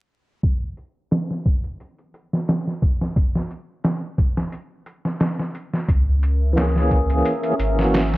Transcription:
0.43 kick medium
0.43 closed hi-hat medium
0.77 closed hi-hat medium
1.11 snare loud
1.11 closed hi-hat medium
1.31 snare soft
1.46 kick medium
1.46 closed hi-hat medium
1.64 closed hi-hat soft
1.80 closed hi-hat medium
1.99 closed hi-hat soft
2.14 closed hi-hat medium
2.33 snare soft
2.48 snare loud
2.48 closed hi-hat medium
2.67 snare soft
2.82 kick medium
2.82 closed hi-hat medium
3.01 snare soft
3.16 kick loud
3.16 closed hi-hat medium
3.35 snare soft
3.51 closed hi-hat medium
3.84 snare loud
3.84 closed hi-hat medium
4.18 kick medium
4.18 closed hi-hat medium
4.37 snare soft
4.52 closed hi-hat medium
4.86 closed hi-hat medium
5.05 snare soft
5.20 snare loud
5.20 closed hi-hat medium
5.39 snare soft
5.55 closed hi-hat medium
5.74 snare soft
5.87 7.22 C#2 medium
5.87 8.17 C#4 medium
5.87 8.17 A#4 medium
5.87 8.17 E5 medium
5.87 kick medium
5.87 closed hi-hat medium
6.23 closed hi-hat medium
6.53 7.37 E3 medium
6.53 7.39 A#3 medium
6.57 7.40 C#4 medium
6.57 snare loud
6.57 closed hi-hat medium
6.62 7.42 G#4 medium
6.76 snare soft
6.91 kick medium
6.91 closed hi-hat medium
7.10 closed hi-hat soft
7.25 closed hi-hat medium
7.42 7.53 E3 medium
7.42 7.54 A#3 medium
7.42 7.55 C#4 medium
7.42 closed hi-hat soft
7.46 7.55 G#4 medium
7.59 8.17 G#1 medium
7.59 closed hi-hat medium
7.75 8.17 E3 medium
7.75 8.17 A#3 medium
7.75 8.17 C#4 medium
7.75 snare soft
7.80 8.17 F#4 medium
7.94 snare loud
7.94 closed hi-hat medium
8.14 snare soft

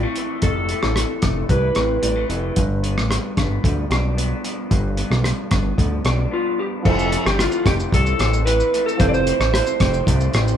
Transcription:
0.00 0.42 F2 medium
0.00 0.69 A3 soft
0.00 1.74 C4 medium
0.00 0.09 F4 medium
0.09 0.46 E4 medium
0.16 0.95 E3 soft
0.16 closed hi-hat soft
0.42 0.75 F1 loud
0.42 2.56 F2 medium
0.42 1.50 A4 medium
0.42 kick medium
0.42 closed hi-hat medium
0.69 1.22 A3 medium
0.69 closed hi-hat soft
0.83 1.04 A1 medium
0.83 cross-stick medium
0.96 1.49 E3 medium
0.96 cross-stick medium
0.96 closed hi-hat medium
1.22 1.44 F1 medium
1.22 2.01 A3 medium
1.22 kick medium
1.22 cross-stick medium
1.22 closed hi-hat medium
1.49 1.71 C2 medium
1.49 2.28 E3 medium
1.49 2.26 B4 medium
1.49 kick medium
1.49 closed hi-hat medium
1.75 1.98 A1 medium
1.75 2.62 C4 medium
1.75 cross-stick medium
1.75 closed hi-hat soft
2.02 2.24 A1 medium
2.02 2.16 G3 medium
2.02 closed hi-hat medium
2.16 2.62 A3 soft
2.29 2.51 F1 medium
2.29 2.62 E3 medium
2.29 closed hi-hat soft
2.56 2.98 G1 loud
2.56 4.70 G2 medium
2.56 kick medium
2.56 closed hi-hat medium
2.83 3.36 B3 medium
2.83 closed hi-hat soft
2.97 3.18 A1 medium
2.97 cross-stick medium
3.09 3.63 F3 medium
3.09 cross-stick medium
3.09 closed hi-hat medium
3.37 3.59 G1 medium
3.37 4.16 B3 medium
3.37 kick medium
3.37 cross-stick medium
3.37 closed hi-hat medium
3.64 3.85 D2 medium
3.64 4.44 F3 medium
3.64 kick medium
3.64 closed hi-hat medium
3.90 4.33 B1 medium
3.90 6.04 D4 medium
3.90 cross-stick medium
3.90 closed hi-hat soft
4.17 4.96 B3 medium
4.17 closed hi-hat medium
4.44 5.24 F3 medium
4.44 closed hi-hat soft
4.71 5.03 G1 loud
4.71 6.85 G2 medium
4.71 kick medium
4.71 closed hi-hat medium
4.97 5.49 B3 medium
4.97 closed hi-hat soft
5.11 5.32 B1 medium
5.11 cross-stick medium
5.24 5.77 F3 medium
5.24 cross-stick medium
5.24 closed hi-hat medium
5.51 5.73 G1 loud
5.51 6.30 B3 medium
5.51 kick medium
5.51 cross-stick medium
5.51 closed hi-hat medium
5.78 6.00 D2 loud
5.78 6.58 F3 medium
5.78 kick medium
5.78 closed hi-hat medium
6.05 6.26 B1 medium
6.05 6.86 D4 medium
6.05 cross-stick medium
6.05 closed hi-hat soft
6.31 6.91 B3 medium
6.31 6.60 F4 medium
6.58 7.39 F3 soft
6.58 6.66 G4 medium
6.83 7.18 F1 loud
6.83 9.00 F2 medium
6.83 8.94 F3 medium
6.83 8.95 C4 medium
6.83 7.65 C4 medium
6.83 8.96 E4 medium
6.83 7.26 A4 medium
6.83 kick medium
6.83 crash medium
6.88 8.97 A4 medium
6.99 shaker soft
7.12 7.91 A3 medium
7.12 closed hi-hat soft
7.12 shaker medium
7.25 7.47 G1 medium
7.25 7.40 G4 medium
7.25 cross-stick medium
7.25 shaker soft
7.39 8.45 E3 medium
7.39 7.67 F4 medium
7.39 cross-stick medium
7.39 closed hi-hat medium
7.39 shaker medium
7.52 shaker soft
7.66 7.87 F1 loud
7.66 8.18 C4 medium
7.66 7.74 G4 medium
7.66 kick medium
7.66 cross-stick medium
7.66 closed hi-hat medium
7.66 shaker medium
7.80 shaker soft
7.92 8.14 C2 medium
7.92 8.72 A3 medium
7.92 8.45 A4 medium
7.92 kick medium
7.92 closed hi-hat medium
7.92 shaker medium
8.06 shaker soft
8.19 8.62 A1 medium
8.19 9.00 C4 medium
8.19 cross-stick medium
8.19 closed hi-hat soft
8.19 shaker soft
8.34 shaker soft
8.46 9.52 E3 medium
8.46 8.83 B4 loud
8.46 closed hi-hat medium
8.46 shaker medium
8.60 shaker medium
8.73 9.26 A3 medium
8.73 closed hi-hat soft
8.73 shaker soft
8.86 9.00 A4 medium
8.86 shaker soft
8.97 9.32 F1 loud
8.97 10.57 F2 medium
8.97 10.56 F3 medium
8.97 10.57 C4 medium
8.97 10.57 E4 medium
8.97 9.07 C5 loud
8.97 kick loud
8.97 closed hi-hat medium
8.97 shaker medium
9.01 9.80 C4 medium
9.01 10.57 A4 medium
9.09 9.14 D5 medium
9.14 9.53 C5 medium
9.14 shaker soft
9.27 10.06 A3 medium
9.27 closed hi-hat soft
9.27 shaker soft
9.40 9.61 A1 medium
9.40 cross-stick medium
9.40 shaker soft
9.53 10.57 E3 medium
9.53 10.04 C5 medium
9.53 cross-stick medium
9.53 closed hi-hat medium
9.53 shaker medium
9.67 shaker soft
9.80 10.02 F1 loud
9.80 10.33 C4 medium
9.80 kick medium
9.80 cross-stick medium
9.80 closed hi-hat medium
9.80 shaker medium
9.94 shaker soft
10.07 10.28 C2 medium
10.07 10.57 A3 medium
10.07 kick medium
10.07 closed hi-hat medium
10.07 shaker medium
10.21 shaker soft
10.34 10.55 A1 medium
10.34 10.57 C4 medium
10.34 cross-stick medium
10.34 closed hi-hat soft
10.34 shaker soft
10.48 shaker soft

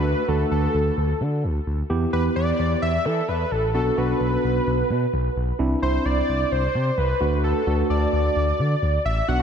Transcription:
0.00 0.14 D2 medium
0.00 0.22 A3 medium
0.00 0.22 D4 medium
0.00 0.22 F#4 medium
0.00 0.30 B4 loud
0.28 0.44 D2 medium
0.28 1.08 A3 medium
0.28 1.08 D4 medium
0.28 1.08 F#4 medium
0.28 0.51 A4 medium
0.51 0.68 D2 loud
0.51 1.17 A4 medium
0.74 0.91 D2 medium
0.97 1.14 D2 loud
1.21 1.45 D3 medium
1.44 1.60 D2 loud
1.67 1.83 D2 medium
1.90 2.06 E2 loud
1.90 2.10 B3 medium
1.90 2.10 E4 medium
1.90 2.10 G4 medium
2.13 2.29 E2 medium
2.13 2.93 B3 medium
2.13 2.93 E4 medium
2.13 2.93 G4 medium
2.13 2.23 B4 medium
2.36 2.52 E2 loud
2.36 2.79 D5 loud
2.59 2.75 E2 loud
2.82 2.98 E2 medium
2.82 3.07 E5 loud
3.05 3.21 E3 loud
3.05 3.30 A4 medium
3.28 3.45 E2 medium
3.28 3.53 B4 medium
3.51 3.76 A1 medium
3.51 3.74 A4 medium
3.74 3.91 B1 loud
3.74 3.94 B3 medium
3.74 3.94 D4 medium
3.74 3.94 F#4 medium
3.74 3.99 A4 medium
3.98 4.14 B1 medium
3.98 4.77 B3 medium
3.98 4.77 D4 medium
3.98 4.77 F#4 medium
3.98 5.36 B4 medium
4.21 4.37 B1 loud
4.44 4.60 B1 loud
4.67 4.83 B1 loud
4.90 5.06 B2 medium
5.13 5.29 B1 medium
5.36 5.52 B1 medium
5.59 5.75 C2 loud
5.59 5.79 C4 medium
5.59 5.79 D4 medium
5.59 5.79 E4 medium
5.82 5.98 C2 loud
5.82 6.62 C4 medium
5.82 6.62 D4 medium
5.82 6.62 E4 medium
5.82 6.07 C5 loud
6.05 6.22 C2 loud
6.05 6.53 D5 loud
6.28 6.45 C2 loud
6.51 6.68 C2 loud
6.51 6.99 C5 loud
6.74 6.91 C3 medium
6.98 7.14 C2 medium
6.98 7.43 B4 medium
7.20 7.53 D2 medium
7.20 7.60 A3 medium
7.20 7.60 D4 medium
7.20 7.60 F#4 medium
7.44 7.87 A4 medium
7.67 7.83 D2 medium
7.67 8.46 A3 medium
7.67 8.47 D4 medium
7.67 8.46 F#4 medium
7.90 8.06 D2 medium
7.90 9.01 D5 medium
8.13 8.29 D2 loud
8.36 8.52 D2 loud
8.59 8.75 D3 medium
8.82 8.98 D2 loud
9.05 9.21 A1 medium
9.05 9.27 E5 medium
9.28 9.42 B1 loud
9.28 9.38 B3 medium
9.28 9.38 D4 medium
9.28 9.38 F#4 medium
9.28 9.42 F#5 loud

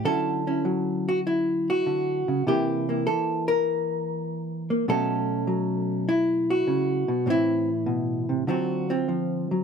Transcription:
0.05 1.85 D3 medium
0.05 0.64 F#3 soft
0.05 0.46 C#4 soft
0.05 0.47 E4 medium
0.05 1.06 A4 loud
0.47 2.43 C#4 soft
0.47 1.26 E4 soft
0.65 2.47 F#3 medium
1.09 1.19 F#4 medium
1.27 2.27 E4 medium
1.70 2.47 F#4 medium
1.86 2.27 D3 medium
2.28 2.46 C#3 medium
2.47 3.06 C3 medium
2.47 3.06 E3 soft
2.47 2.88 A#3 soft
2.47 2.88 E4 soft
2.47 3.06 G4 medium
2.89 4.68 A#3 soft
2.89 4.85 E4 soft
3.07 4.87 E3 medium
3.07 3.47 A4 medium
3.48 4.86 A#4 medium
4.70 4.85 A#3 soft
4.88 6.67 B2 medium
4.88 5.46 F#3 medium
4.88 7.27 A3 soft
4.88 6.08 C#4 soft
4.88 6.50 A4 loud
5.47 7.25 F#3 medium
6.09 7.09 E4 medium
6.50 7.28 F#4 medium
6.67 7.08 C#3 medium
7.08 7.27 B2 medium
7.26 8.45 A2 medium
7.26 8.47 E3 soft
7.26 7.69 C4 soft
7.30 8.49 E4 loud
7.86 8.28 B2 medium
8.29 8.47 C3 medium
8.47 9.64 D3 medium
8.47 9.08 F#3 medium
8.47 8.89 C4 medium
8.47 8.89 F4 medium
8.47 8.93 F#4 medium
8.90 9.64 C4 medium
8.90 9.64 F4 soft
9.08 9.50 F3 medium
9.51 9.64 F#3 medium

